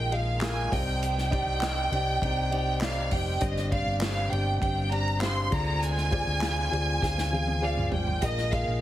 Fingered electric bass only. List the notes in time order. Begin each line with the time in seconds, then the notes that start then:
Already playing: A#1
0.72 C2
1.46 C2
1.92 C2
2.22 C2
3.12 F1
3.41 G1
3.86 G1
4.32 G1
4.61 G1
5.52 D2
6.27 D2
6.72 D2
7.02 D2
7.92 G#1
8.22 A#1
8.67 A#1